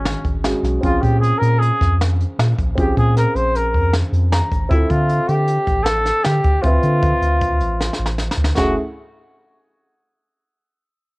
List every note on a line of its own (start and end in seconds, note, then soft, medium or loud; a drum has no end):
0.00 0.15 G#1 medium
0.00 0.40 G#3 medium
0.00 0.33 C#4 medium
0.00 0.41 C#4 medium
0.00 0.42 F#4 medium
0.00 0.42 G#4 medium
0.05 snare loud
0.05 closed hi-hat medium
0.24 0.54 G#1 medium
0.24 kick medium
0.24 closed hi-hat medium
0.44 0.83 G#3 medium
0.44 0.80 C#4 soft
0.44 0.84 F#4 soft
0.44 0.83 G#4 medium
0.44 snare loud
0.44 closed hi-hat medium
0.63 0.78 B1 medium
0.63 snare soft
0.63 closed hi-hat medium
0.81 0.98 A#1 loud
0.81 2.72 C4 medium
0.81 2.72 C#4 medium
0.81 2.73 F4 medium
0.81 1.03 F4 medium
0.81 kick medium
0.81 closed hi-hat medium
0.85 2.74 G#4 medium
1.01 1.32 A#2 medium
1.01 1.19 G4 medium
1.01 kick medium
1.01 closed hi-hat medium
1.20 1.40 G#4 medium
1.20 closed hi-hat medium
1.38 1.71 A#2 medium
1.38 1.60 A#4 medium
1.42 closed hi-hat medium
1.59 1.99 G#4 medium
1.59 closed hi-hat medium
1.81 2.25 F2 medium
1.81 kick medium
1.81 snare soft
1.81 closed hi-hat medium
2.01 snare loud
2.01 closed hi-hat medium
2.20 closed hi-hat medium
2.39 2.53 A#2 medium
2.39 snare loud
2.39 closed hi-hat medium
2.58 2.73 A#1 medium
2.58 kick medium
2.58 closed hi-hat medium
2.75 2.92 A#1 loud
2.75 4.66 C4 medium
2.75 4.67 C#4 medium
2.75 4.67 F4 medium
2.75 2.96 G4 medium
2.75 4.68 G#4 medium
2.75 kick loud
2.75 closed hi-hat medium
2.97 3.26 A#2 medium
2.97 3.15 G#4 medium
2.97 kick medium
2.97 closed hi-hat medium
3.17 3.37 A#4 medium
3.17 snare soft
3.17 closed hi-hat medium
3.35 3.76 A#1 medium
3.35 3.58 C5 medium
3.35 closed hi-hat medium
3.55 3.94 A#4 medium
3.55 closed hi-hat medium
3.74 4.03 F2 medium
3.74 kick medium
3.74 closed hi-hat medium
3.93 snare loud
3.93 closed hi-hat medium
4.12 4.42 F2 medium
4.12 closed hi-hat medium
4.32 4.68 A#5 medium
4.32 snare loud
4.32 closed hi-hat medium
4.51 4.66 G#1 medium
4.51 kick medium
4.51 closed hi-hat medium
4.69 4.85 D2 loud
4.69 6.59 C4 medium
4.69 4.92 E4 medium
4.69 6.61 F4 medium
4.69 6.61 A4 medium
4.69 6.60 E5 medium
4.69 kick loud
4.69 closed hi-hat medium
4.90 5.20 D3 medium
4.90 5.30 F4 medium
4.90 kick medium
4.90 closed hi-hat medium
5.09 closed hi-hat medium
5.29 5.58 D3 medium
5.29 5.85 G4 medium
5.29 closed hi-hat medium
5.48 closed hi-hat medium
5.67 6.11 A1 medium
5.67 kick medium
5.67 closed hi-hat medium
5.84 6.25 A4 loud
5.84 snare loud
5.84 closed hi-hat medium
6.06 snare soft
6.06 closed hi-hat medium
6.24 6.41 D3 medium
6.24 6.63 G4 medium
6.24 snare loud
6.24 closed hi-hat medium
6.44 6.59 D2 medium
6.44 kick medium
6.44 closed hi-hat medium
6.62 6.79 D2 loud
6.62 8.53 C4 medium
6.62 8.18 F4 medium
6.62 8.54 F4 medium
6.62 8.54 E5 medium
6.62 kick medium
6.62 closed hi-hat medium
6.67 8.55 B4 medium
6.83 7.13 D3 medium
6.83 closed hi-hat medium
7.03 kick loud
7.03 closed hi-hat medium
7.22 7.61 D2 medium
7.22 closed hi-hat medium
7.41 kick medium
7.41 closed hi-hat medium
7.60 7.90 A1 medium
7.60 closed hi-hat medium
7.81 snare medium
7.93 snare medium
7.99 8.29 A1 medium
8.06 snare medium
8.18 snare medium
8.31 snare medium
8.37 8.52 D2 medium
8.44 snare medium
8.56 8.76 F#1 loud
8.56 8.75 A3 medium
8.56 8.75 C#4 medium
8.56 8.75 E4 medium
8.56 8.75 F#4 medium
8.56 8.76 G#4 medium
8.56 kick medium
8.56 snare medium
8.56 splash medium